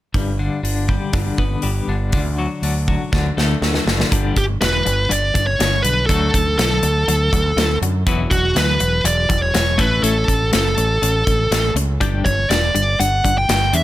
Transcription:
0.14 G1 G2, kick, open hi-hat
0.39 D3
0.63 G1 D3, open hi-hat
0.88 G3, kick
1.13 G1 D3, kick, open hi-hat
1.38 G1 B3, kick
1.62 G1 G3, open hi-hat
1.88 G1 D3
2.12 D2 D3, kick, open hi-hat
2.38 F#3
2.62 D2 D3, open hi-hat
2.88 F#3, kick
3.12 D2 D3, kick, snare
3.37 D2 A3, snare
3.62 D2 F#3, snare
3.74 snare
3.86 F#1 D3, snare
4.00 snare
4.11 G1 G2 D3 G3, kick, closed hi-hat
4.36 G1 G2 D3 G4, kick, closed hi-hat
4.61 E1 G2 D3 B4, snare, closed hi-hat
4.85 G1 G2 D3, closed hi-hat
5.09 G1 G2 D3 D5, closed hi-hat
5.34 G1 G2 D3, kick, closed hi-hat
5.47 C#5
5.59 G1 G2 D3, snare, closed hi-hat
5.82 B1 G2 D3 B4, closed hi-hat
6.06 D2 D3 F#3 A4, kick, closed hi-hat
6.10 A3
6.34 D2 D3 F#3, kick, closed hi-hat
6.58 B1 D3 F#3 A4, snare, closed hi-hat
6.83 D2 D3 F#3, closed hi-hat
7.08 D2 D3 F#3, closed hi-hat
7.33 D2 D3 F#3, kick, closed hi-hat
7.56 D2 D3 F#3, snare, closed hi-hat
7.82 F#2 D3 F#3, closed hi-hat
8.07 E1 E3 F#3 B3, kick, closed hi-hat
8.31 E1 F#3 F#4, kick, closed hi-hat
8.55 D2 E3 F#3 B4, snare, closed hi-hat
8.80 E1 E3 F#3, closed hi-hat
9.04 E1 E3 F#3 D5, closed hi-hat
9.29 E1 E3 F#3, kick, closed hi-hat
9.42 C#5
9.54 E1 E3 F#3, snare, closed hi-hat
9.78 A1 A3 C#4 E4 B4, kick, closed hi-hat
10.03 A1 A3 C#4 E4 A4, closed hi-hat
10.27 A1 A3 C#4, kick, closed hi-hat
10.52 F#1 A3 C#4 A4, snare, closed hi-hat
10.77 A1 A3 C#4, closed hi-hat
11.02 A1 A3 C#4, closed hi-hat
11.27 A1 A3 C#4, kick, closed hi-hat
11.51 A1 A3 C#4, snare, closed hi-hat
11.75 C#2 A3 C#4, closed hi-hat
12.00 G1 G3 D4 G4, kick, closed hi-hat
12.25 G1 G3 D4 C#5, kick, closed hi-hat
12.50 E1 G3 D4 D5, snare, closed hi-hat
12.75 G1 G3 D4, closed hi-hat
12.99 G1 G3 D4 F#5, closed hi-hat
13.24 G1 G3 D4, kick, closed hi-hat
13.38 G5
13.49 G1 G3 D4, snare, closed hi-hat
13.73 E2 G3 D4 E5, closed hi-hat

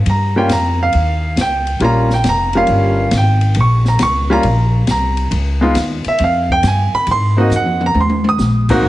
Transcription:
0.06 G2 A#5, ride
0.36 G3 A#3 C#4 F4 G5
0.49 F2 A#5, snare, hi-hat pedal, ride
0.83 F5
0.93 D#2, ride
1.36 C#2, snare, hi-hat pedal, ride
1.41 G5
1.67 ride
1.80 A#1 G3 A#3 C#4 F4, ride
1.84 A#5
2.10 G5, snare
2.24 F1, snare, hi-hat pedal, ride
2.29 A#5
2.53 G3 A#3 C#4 F4, ride
2.57 F5
2.67 G1, ride
3.11 G#1, snare, hi-hat pedal, ride
3.17 G5
3.41 ride
3.54 A#1, ride
3.61 C#6
3.85 A#5, snare
3.99 C#2 C#6, snare, hi-hat pedal, ride
4.30 G3 A#3 C#4 F4 A#5
4.43 A#1, ride
4.87 C2 A#5, snare, hi-hat pedal, ride
5.17 ride
5.31 C#2, ride
5.61 G#3 B3 D#4 F4
5.75 D#2, snare, hi-hat pedal, ride
6.04 E5, muted upright bass stroke, ride
6.18 F2, ride
6.24 F5
6.49 G5, kick
6.63 G2, snare, hi-hat pedal, ride
6.67 G#5
6.93 B5, muted upright bass stroke
7.07 G#2, ride
7.11 C6
7.37 A#3 C4 D#4 F#4
7.41 D#5
7.50 F2, hi-hat pedal, mid tom
7.56 F#5
7.66 mid tom
7.81 mid tom
7.86 A#5
7.94 D#2, high tom
8.01 C6
8.10 high tom
8.24 high tom
8.29 D#6
8.38 A#1, snare, hi-hat pedal
8.69 G#2 A#3 C4 D#4 F#4, kick, crash
8.83 G#1

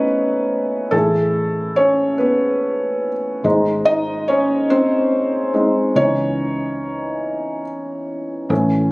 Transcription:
Already playing: A1 A3 B3 C#4 D#4 E4 B4 C#5 D#5
0.91 A1 A3 E4 G#4 A4
1.76 C#4 C#5
2.18 B3 B4
3.44 G#1 G#3 D#4 C5
3.85 D#4 D#5
4.28 C#4 C#5
4.70 C4 C5
5.54 G#3 C4 D#4
5.96 C#2 E3 B3 C#4 D#4 C#5
8.49 A1 E3 A3 C#4

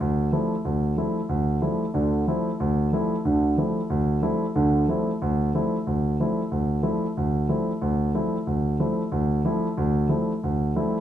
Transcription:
0.01 D2
0.32 F3 G3 A3 C4 E4
0.65 D2
0.97 F3 G3 A3 C4 E4
1.29 D2
1.61 F3 G3 A3 C4 E4
1.94 D2 D3
2.27 F3 G3 A3 C4 E4
2.60 D2
2.93 F3 G3 A3 C4 E4
3.25 D2 D3
3.57 F3 G3 A3 C4 E4
3.90 D2
4.22 F3 G3 A3 C4 E4
4.55 D2 D3
4.88 F3 G3 A3 C4 E4
5.22 D2
5.54 F3 G3 A3 C4 E4
5.87 D2
6.20 F3 G3 A3 C4 E4
6.51 D2
6.83 F3 G3 A3 C4 E4
7.17 D2
7.49 F3 G3 A3 C4 E4
7.82 D2
8.14 F3 G3 A3 C4 E4
8.47 D2
8.79 F3 G3 A3 C4 E4
9.12 D2
9.45 F3 G3 A3 C4 E4
9.77 D2
10.08 F3 G3 A3 C4 E4
10.44 D2
10.75 F3 G3 A3 C4 E4

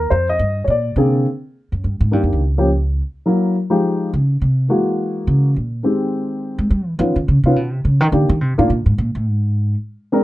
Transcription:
Already playing: A#4
0.10 F2 C5
0.29 D#5
0.39 G2
0.64 A#2 C#5
0.70 D5
0.96 C3 D3 A#3 C4 G#4
1.72 F#2
1.84 G2
2.00 G#2
2.11 G2 D#3 A#3 D4 G4
2.23 F2
2.33 C#2
2.58 F3 A#3 C#4 G4
3.26 F#3 A#3 E4 A#4
3.70 F3 G#3 D#4 G4
4.14 C#3
4.42 C3
4.68 E3 G#3 A#3 F#4
5.27 C#3
5.56 A#2
5.83 D#3 G#3 C4 G4
6.58 G#3
6.70 G3
6.87 E3
6.99 D#3 F3 B3 C#4 F4
7.16 D#3
7.28 C#3
7.43 C3 D#3 B3 C#4 F4
7.56 B2
7.72 C3
7.85 C#3
8.00 D#3
8.12 D3 D#3 A#3 D4 G4
8.29 D#3
8.41 C3
8.58 A2 D#3 A#3 D4 F4
8.70 A#2
8.86 G#2
8.98 A#2
9.15 A2
9.28 G#2
10.12 G#3 C4 D4 A#4

